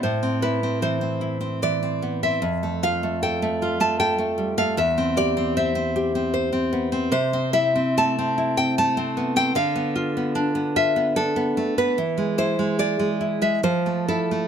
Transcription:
\new Staff \with { instrumentName = "Nylon-string guitar" } { \time 3/4 \key c \major \tempo 4 = 75 << { c''8 b'8 c''4 d''8. e''16~ | e''8 f''8 g''8. a''16 g''8. f''16 | e''8 d''8 e''4 r4 | \key a \minor c''8 e''8 a''8. g''16 a''8. g''16 |
f''4. e''8 a'8. b'16~ | b'8 c''8 d''8. e''16 c''8 a'8 | } \\ { a,16 c'16 e'16 c'16 e16 c'16 e'16 c'16 e16 c'16 b16 c'16 | f,16 a16 f'16 a16 a'16 a16 f'16 a16 a'16 a16 g16 a16 | e,16 c'16 g'16 c'16 c''16 c'16 g'16 c'16 c''16 c'16 b16 c'16 | c16 c'16 e'16 c'16 a16 c'16 e'16 c'16 a16 c'16 b16 c'16 |
d16 b16 f'16 b16 d'16 b16 f'16 b16 d'16 b16 a16 b16 | e16 gis16 e'16 gis16 gis'16 gis16 e'16 gis16 f16 a16 e'16 a16 | } >> }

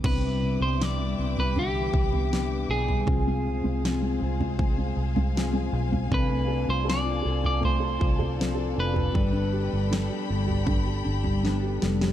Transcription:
<<
  \new Staff \with { instrumentName = "String section" } { \time 4/4 \key e \phrygian \tempo 4 = 79 << { <g'' d'''>1 | <f'' aes''>1~ | <f'' aes''>1 | <g'' b''>1 | } \\ { <b' e''>1 | <aes' c''>1 | <a' d''>1~ | <a' d''>1 | } >> }
  \new Staff \with { instrumentName = "Clean electric guitar" } { \time 4/4 \key e \phrygian b'8. c''16 d''8. b'16 g'4. aes'8~ | aes'2~ aes'8 r4. | b'8. c''16 d''8. d''16 c''4. b'8~ | b'2~ b'8 r4. | }
  \new Staff \with { instrumentName = "Steel-string acoustic guitar" } { \time 4/4 \key e \phrygian <c g b d' e'>4 <g b d' e'>8 <b d' e'>4. <g b d' e'>8 <b d' e'>8 | <c f c' f' aes'>4 <f c' f' aes'>8 <c' f' aes'>4. <f c' f' aes'>8 <c' f' aes'>8 | <c f c' d' a'>4 <f c' d' a'>8 <c' d' a'>4. <f c' d' a'>8 <c' d' a'>8 | <g b d' a'>4 <g b d' a'>8 <b d' a'>4. <g b d' a'>8 <b d' a'>8 | }
  \new Staff \with { instrumentName = "Upright piano" } { \time 4/4 \key e \phrygian c'16 g16 c16 g16 c16 g16 c16 g16 d16 e8 b4 g16 | c'16 aes16 c16 aes16 c16 aes16 c16 aes8 aes8 aes8 aes8 aes16 | c16 a16 a'16 f'16 a'16 f'16 a'16 f'16 a16 a'16 f'16 a'16 f'16 a'16 f'16 a'16 | g16 d'16 g'16 g16 d'16 g'16 g16 g'16 d'16 g'16 d'16 g16 d'16 g'16 g16 g'16 | }
  \new Staff \with { instrumentName = "Fingered electric bass" } { \clef bass \time 4/4 \key e \phrygian c,8. c,8. c,4 c,4 b,,8 | c,8. c,8. c,4 c,4 b,,8 | c,8. c,8. c,4 c,4 f,,8 | g,,8. g,,8 r16 g,,4 g,,4 f,,8 | }
  \new DrumStaff \with { instrumentName = "Drums" } \drummode { \time 4/4 <cymc bd tomfh>4 sn8. tomfh16 tomfh8 bd16 tomfh16 sn8. tomfh16 | <bd tomfh>4 sn8. tomfh16 <bd tomfh>8. tomfh16 sn8. tomfh16 | <bd tomfh>4 sn8. tomfh16 tomfh8 bd16 tomfh16 sn8. tomfh16 | <bd tomfh>4 sn8. tomfh16 <bd tomfh>8. tomfh16 sn8 sn16 sn16 | }
>>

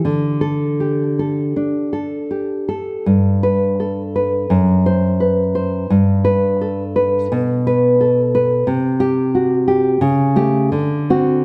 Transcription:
\new Staff \with { instrumentName = "Nylon-string guitar" } { \time 4/4 \key g \major \tempo 4 = 85 << { r8 a'4 r2 r8 | r8 b'4 r4 c''4 r8 | r8 b'4 r4 b'4 r8 | r8 g'4 r4 g'8 r8 fis'8 | } \\ { d4 g'8 a'8 d'8 a'8 g'8 a'8 | g,4 a'8 b'8 fis,4 b'8 c''8 | g,4 a'8 b'8 b,4 a'8 b'8 | c4 fis'8 g'8 cis8 a8 d8 c'8 | } >> }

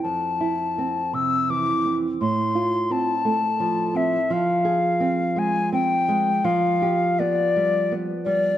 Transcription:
<<
  \new Staff \with { instrumentName = "Flute" } { \time 3/4 \key f \lydian \tempo 4 = 84 a''4. e'''8 d'''8 r8 | c'''4 a''4. e''8 | \key g \phrygian f''4. aes''8 g''4 | f''4 d''4. d''8 | }
  \new Staff \with { instrumentName = "Nylon-string guitar" } { \time 3/4 \key f \lydian f,8 e'8 c'8 c8 e8 c'8 | a,8 f'8 c'8 a8 f8 c'8 | \key g \phrygian f8 aes'8 c'8 aes8 c'8 aes8 | f8 g'8 b8 g8 b8 g8 | }
>>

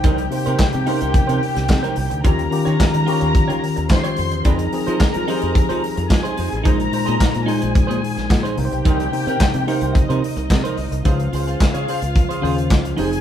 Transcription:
<<
  \new Staff \with { instrumentName = "Violin section" } { \time 4/4 \key des \lydian \tempo 4 = 109 <g' g''>1 | <bes' bes''>2. <c'' c'''>4 | <bes' bes''>2. <aes' aes''>4 | <bes' bes''>4. <aes' aes''>2 <g' g''>8~ |
<g' g''>2 <ees' ees''>2 | <f' f''>2.~ <f' f''>8 <aes' aes''>8 | }
  \new Staff \with { instrumentName = "Clean electric guitar" } { \time 4/4 \key des \lydian <ees' bes' c''>16 r8 <ees' bes' c''>16 r8 <ees' bes' c''>16 <ees' bes' c''>16 r16 <ees' bes' c''>16 r8. <ees' bes' c''>16 r8 | <f' g' des''>16 r8 <f' g' des''>16 r8 <f' g' des''>16 <f' g' des''>16 r16 <f' g' des''>16 r8. <f' g' des''>16 r8 | <ees' aes' c''>16 r8 <ees' aes' c''>16 r8 <ees' aes' c''>16 <ees' aes' c''>16 r16 <ees' aes' c''>16 r8. <ees' aes' c''>16 <ees' aes' c''>16 r16 | <ees' aes' c''>16 r8 <ees' aes' c''>16 r8 <ees' aes' c''>16 <ees' aes' c''>16 r16 <ees' aes' c''>16 r8. <ees' aes' c''>16 r8 |
<ees' bes' c''>16 r8 <ees' bes' c''>16 r8 <ees' bes' c''>16 <ees' bes' c''>16 r16 <ees' bes' c''>16 r8. <ees' bes' c''>16 r8 | <f' aes' c''>16 r16 <f' aes' c''>16 <f' aes' c''>16 r16 <f' aes' des''>16 <f' aes' c''>16 r8 <f' aes' c''>16 <f' aes' c''>16 r8. <ees' aes' c''>16 r16 | }
  \new Staff \with { instrumentName = "Tine electric piano" } { \time 4/4 \key des \lydian <c bes ees' c''>8 <c bes ees' c''>8 r8 <c bes des' ees' bes'>4~ <c bes des' ees' bes'>16 r4 r16 | <ees des' f' g'>8 <ees des' f' g'>8 r8 <ees des' f' g'>4~ <ees des' f' g'>16 r4 r16 | <f c' ees' aes'>8 <f c' ees' aes'>8 r8 <f c' ees' g' aes'>4~ <f c' ees' g' aes'>16 r4 r16 | <bes, aes ees' c''>8 <bes, aes ees' c''>8 r8 <bes, aes ees' c''>4~ <bes, aes ees' c''>16 r8. <c bes ees' bes' c''>8~ |
<c bes ees' bes' c''>8 <c bes ees' c''>8 r8 <c bes ees' c''>4~ <c bes ees' c''>16 r4 r16 | <des des' ees' f' c''>4~ <des des' ees' f' c''>16 r4 r16 <des des' f' c''>4 <f c' ees' g' aes'>8 | }
  \new Staff \with { instrumentName = "Fingered electric bass" } { \clef bass \time 4/4 \key des \lydian c,8 r16 c16 r16 c16 r16 c,16 r16 c16 r16 c,16 c16 r16 c,16 d,16 | ees,8 r16 ees16 r16 ees16 r16 ees,16 r16 ees16 r16 ees,16 ees16 r16 f,16 e,16 | f,8 r16 f16 r16 f16 r16 f,16 r16 f16 r16 f,16 f16 r16 f,16 a,,16 | bes,,8 r16 bes,16 r16 bes,16 r16 bes,,16 r16 bes,16 r16 bes,,16 bes,16 r16 c,16 b,,16 |
c,8 r16 c16 r16 c16 r16 c,16 r16 c16 r16 c,16 c16 r16 c,16 c,16 | des,8 des,8 r16 des16 r16 des,8 r16 ees,8 des,8 f,,8 | }
  \new DrumStaff \with { instrumentName = "Drums" } \drummode { \time 4/4 <hh bd>16 hh16 hho16 hh16 <hc hh bd sn>16 hh16 hho16 hh16 <hh bd>16 hh16 hho16 <hh sn>16 <hc hh bd sn>16 hh16 hho16 hh16 | <hh bd>16 hh16 hho16 hh16 <hc hh bd sn>16 hh16 hho16 hh16 <hh bd>16 hh16 hho16 hh16 <hc hh bd sn>16 hh16 hho16 hh16 | <hh bd>16 hh16 hho16 hh16 <hc hh bd sn>16 hh16 hho16 hh16 <hh bd>16 hh16 hho16 hh16 <hc hh bd sn>16 hh16 hho16 hh16 | <hh bd>16 hh16 hho16 hh16 <hc hh bd sn>16 hh16 hho16 hh16 <hh bd>16 hh16 hho16 <hh sn>16 <hc hh bd sn>16 hh16 hho16 hh16 |
<hh bd>16 hh16 hho16 hh16 <hc hh bd sn>16 hh16 hho16 hh16 <hh bd>16 hh16 hho16 hh16 <hc hh bd sn>16 hh16 hho16 hh16 | <hh bd>16 hh16 hho16 hh16 <hc hh bd sn>16 hh16 hho16 hh16 <hh bd>16 hh16 hho16 hh16 <hc hh bd sn>16 hh16 hho16 hh16 | }
>>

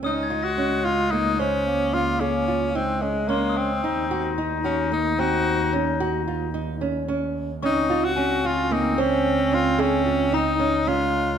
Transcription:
<<
  \new Staff \with { instrumentName = "Glockenspiel" } { \time 7/4 \key des \major \tempo 4 = 111 ees'''16 aes'''16 bes'''2. r2 r8 c'''16 ees'''8.~ | ees'''8. r1. r16 | des'''4 aes''2. r4 bes''2 | }
  \new Staff \with { instrumentName = "Nylon-string guitar" } { \time 7/4 \key des \major des'8 f'8 des'8 f'8 bes8 c''4 des'8 aes'8 f'8 ees'8 des'8 des'4 | ees'8 ges'8 ees'8 ges'8 bes8 c'4 des'8 ges'8 f'8 ees'8 des'8 des'4 | des'8 f'8 des'8 f'8 bes8 c''4 des'8 aes'8 f'8 ees'8 des'8 des'4 | }
  \new Staff \with { instrumentName = "Tenor saxophone" } { \time 7/4 \key des \major ees'8. ges'8. f'8 ees'8 des'4 f'8 des'4 c'8 aes8 bes8 c'8~ | c'4 r8 des'8 ees'8 ges'4 r2. r8 | ees'8. ges'8. f'8 ees'8 des'4 f'8 des'4 ees'4 f'4 | }
  \new Staff \with { instrumentName = "Clarinet" } { \time 7/4 \key des \major aes2. bes2 aes2 | ees'1.~ ees'8 r8 | c'1. aes4 | }
  \new Staff \with { instrumentName = "Double bass" } { \clef bass \time 7/4 \key des \major des,1.~ des,4 | ees,1.~ ees,4 | des,1.~ des,4 | }
>>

